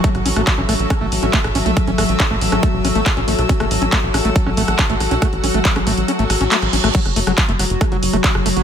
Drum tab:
CC |----------------|----------------|----------------|----------------|
HH |xxoxx-oxx-oxxxox|xxoxx-oxx-oxxxox|xxoxx-oxx-oxxxox|xxoxxxoxxxoxxxox|
CP |----x-------x---|----x-------x---|----x-------x---|----x-------x---|
SD |-r-r--r-r--r-r--|r-r--r-r--r-r--r|-r--r-r--r-r--r-|r--r-r--r-r--r-r|
BD |o---o---o---o---|o---o---o---o---|o---o---o---o---|o---o-----------|

CC |x---------------|
HH |xxoxxxoxxxoxx-ox|
CP |----x-------x---|
SD |-r-r--r-r--r-r--|
BD |o---o---o---o---|